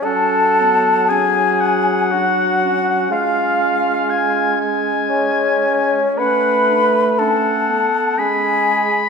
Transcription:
<<
  \new Staff \with { instrumentName = "Flute" } { \time 3/4 \key fis \minor \tempo 4 = 59 a''4 gis''4 fis''4 | eis''4. r8 cis''4 | b''4 a''4 gis''4 | }
  \new Staff \with { instrumentName = "Oboe" } { \time 3/4 \key fis \minor fis''4 gis''8 fis''4. | eis''4 gis''8 gis''4. | fis''8 r8 fis''4 b''4 | }
  \new Staff \with { instrumentName = "Bassoon" } { \time 3/4 \key fis \minor a'4 gis'4 fis'4 | eis'4. r8 cis'4 | b'4 a'4 gis'4 | }
  \new Staff \with { instrumentName = "Clarinet" } { \time 3/4 \key fis \minor cis'8 b8 cis'4 d'8 cis'8~ | cis'2. | cis'8 d'8 cis'8 b8 cis'8 r8 | }
  \new Staff \with { instrumentName = "French horn" } { \clef bass \time 3/4 \key fis \minor fis2. | gis2. | a4. r8 gis4 | }
>>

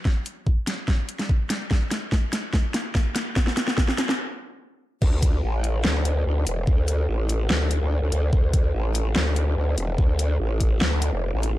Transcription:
<<
  \new Staff \with { instrumentName = "Wobble bass" } { \clef bass \time 4/4 \key d \minor \tempo 4 = 145 r1 | r1 | r1 | d,4 a,,4 d,4 d,8 e,,8 |
d,4 a,,4 d,8. d,8 d,16 d,8 | d,4 a,,4 d,4 d,8 e,,8 | d,4 a,,4 d,8. f,,8 a,,8. | }
  \new DrumStaff \with { instrumentName = "Drums" } \drummode { \time 4/4 <bd sn>8 hh8 bd8 <hh sn>8 <bd sn>8 hh16 <hh sn>16 bd8 <hh sn>8 | <bd sn>8 <hh sn>8 <bd sn>8 <hh sn>8 <bd sn>8 <hh sn>8 <bd sn>8 <hh sn>8 | <bd sn>16 sn16 <hh sn>16 sn16 <bd sn>16 sn16 <hh sn>16 sn16 r4 r4 | <cymc bd>8 <hh bd>8 r8 hh8 sn8 hh8 r8 hh8 |
bd8 hh8 r8 hh8 sn8 hh8 r8 hh8 | bd8 <hh bd>8 r8 hh8 sn8 hh8 r8 hh8 | bd8 hh8 r8 <hh bd>8 sn8 hh8 r8 hh8 | }
>>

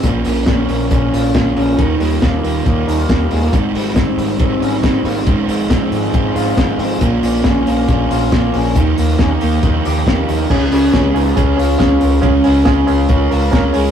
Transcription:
<<
  \new Staff \with { instrumentName = "Reed electric piano" } { \time 4/4 \key des \lydian \tempo 4 = 138 r1 | r1 | r1 | r1 |
r1 | r1 | <des' f' aes'>8 <des' f' g'>8 <des' f' aes'>8 <des' f' aes'>8 <des' f' aes'>8 <des' f' aes'>8 <des' f' aes'>8 <des' f' bes'>8 | <des' f' aes'>8 <des' f' aes'>8 <des' f' aes'>8 <des' f' aes'>8 <des' f' bes'>8 <des' f' bes'>8 <des' f' bes'>8 <des' f' aes'>8 | }
  \new Staff \with { instrumentName = "Overdriven electric guitar" } { \time 4/4 \key des \lydian <bes, f bes des' f'>8 <bes des' f'>8 <f bes des' f'>4 <bes, f bes des' f'>4 <f bes des' f'>4 | <ees g bes f'>8 <g bes f'>8 <ees g bes f'>8 <g bes f'>8 <ees g bes f'>4 <ees g bes f'>4 | <aes, ees g c' ees'>8 <g c' ees'>8 <ees g c' ees'>4 <aes, ees g c' ees'>4 <ees g c' ees'>4 | <aes, des f aes c' f'>8 <f aes c' f'>8 <f aes c' f'>4 <aes, des f aes c' f'>4 <f aes c' f'>4 |
<bes, f bes des' f'>4 <f bes des' f'>8 <bes des' f'>8 <bes, f bes des' f'>4 <f bes des' f'>4 | <ees f bes ees' g'>4 <f bes ees' g'>8 <bes ees' g'>8 <ees f bes ees' g'>4 <f bes ees' g'>4 | <des aes des' f' aes'>8 <des' f' aes'>8 <aes des' f' aes'>4 <des aes des' f' aes'>4 <aes des' f' aes'>4 | <des aes des' f' aes'>8 <des' f' aes'>8 <aes des' f' aes'>4 <des aes des' f' aes'>4 <aes des' f' aes'>8 <des' f' aes'>8 | }
  \new Staff \with { instrumentName = "Clean electric guitar" } { \time 4/4 \key des \lydian bes,8 bes8 des'8 bes8 des'8 f'8 bes8 des'8 | ees8 g8 bes8 g8 bes8 ees'16 f'16 g8 aes16 bes16 | aes,8 g8 c'8 g8 c'8 des'16 ees'16 g8 bes16 c'16 | aes,8 aes8 c'8 aes8 c'8 f'8 aes8 c'8 |
bes,8 bes8 des'8 bes8 des'8 f'8 bes8 des'8 | ees8 bes8 des'16 ees'16 bes8 ees'8 g'8 bes8 ees'8 | des8 des'8 aes8 ees'16 f'16 des'8 f'8 des'8 aes8 | des8 des'8 aes8 f'8 des'8 f'8 des'8 aes8 | }
  \new Staff \with { instrumentName = "Analog synth bass" } { \clef bass \time 4/4 \key des \lydian bes,,8 bes,,8 bes,,8 bes,,8 bes,,8 bes,,8 bes,,8 bes,,8 | ees,8 ees,8 ees,8 ees,8 ees,8 ees,8 ees,8 ees,8 | aes,,8 aes,,8 aes,,8 aes,,8 aes,,8 aes,,8 aes,,8 aes,,8 | aes,,8 aes,,8 aes,,8 aes,,8 aes,,8 aes,,8 aes,,8 aes,,8 |
bes,,8 bes,,8 bes,,8 bes,,8 bes,,8 bes,,8 bes,,8 bes,,8 | ees,8 ees,8 ees,8 ees,8 ees,8 ees,8 ees,8 ees,8 | des,8 des,8 des,8 des,8 des,8 des,8 des,8 des,8 | des,8 des,8 des,8 des,8 des,8 des,8 des,8 des,8 | }
  \new DrumStaff \with { instrumentName = "Drums" } \drummode { \time 4/4 <hh bd>8 hho8 <hh bd sn>8 hho8 <hh bd>8 hho8 <hh bd sn>8 hho8 | <hh bd>8 hho8 <hh bd sn>8 hho8 <hh bd>8 hho8 <hh bd sn>8 hho8 | <hh bd>8 hho8 <hh bd sn>8 hho8 <hh bd>8 hho8 <hh bd sn>8 hho8 | <hh bd>8 hho8 <hh bd sn>8 hho8 <hh bd>8 hho8 <hh bd sn>8 hho8 |
<hh bd>8 hho8 <hh bd sn>8 hho8 <hh bd>8 hho8 <hh bd sn>8 hho8 | <hh bd>8 hho8 <hh bd sn>8 hho8 <hh bd>8 hho8 <hh bd sn>8 hho8 | <cymc bd>8 hho8 <hh bd sn>8 hho8 <hh bd>8 hho8 <hh bd sn>8 hho8 | <hh bd>8 hho8 <hh bd sn>8 hho8 <hh bd>8 hho8 <hh bd sn>8 hho8 | }
>>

